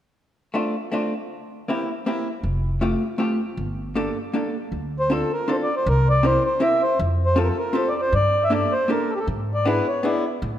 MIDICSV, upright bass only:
0, 0, Header, 1, 2, 480
1, 0, Start_track
1, 0, Key_signature, -1, "minor"
1, 0, Tempo, 379987
1, 205, Time_signature, 3, 2, 24, 8
1, 13375, End_track
2, 0, Start_track
2, 0, Title_t, "Upright bass"
2, 0, Program_c, 0, 32
2, 3075, Note_on_c, 0, 29, 72
2, 3699, Note_off_c, 0, 29, 0
2, 4514, Note_on_c, 0, 31, 77
2, 5143, Note_off_c, 0, 31, 0
2, 5959, Note_on_c, 0, 38, 70
2, 6587, Note_off_c, 0, 38, 0
2, 7408, Note_on_c, 0, 36, 87
2, 8027, Note_off_c, 0, 36, 0
2, 8835, Note_on_c, 0, 41, 86
2, 9456, Note_off_c, 0, 41, 0
2, 10264, Note_on_c, 0, 43, 83
2, 10891, Note_off_c, 0, 43, 0
2, 11715, Note_on_c, 0, 44, 82
2, 12343, Note_off_c, 0, 44, 0
2, 13163, Note_on_c, 0, 45, 89
2, 13375, Note_off_c, 0, 45, 0
2, 13375, End_track
0, 0, End_of_file